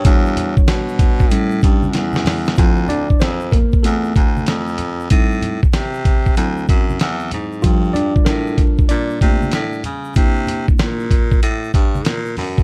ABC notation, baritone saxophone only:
X:1
M:4/4
L:1/16
Q:"Swing 16ths" 1/4=95
K:Dm
V:1 name="Baritone saxophone" clef=bass
E,,3 =B,, B,,4 A,,2 G,,2 E,,4 | D,,3 F,, F,,2 z2 E,,2 D,,2 F,,4 | A,,3 C, C,4 D,,2 ^F,,2 E,,2 ^G,,2 | G,,3 A,, A,,2 z2 B,,2 C,2 A,,2 ^C,2 |
C,3 B,, B,,4 A,,2 G,,2 B,,2 ^F,,2 |]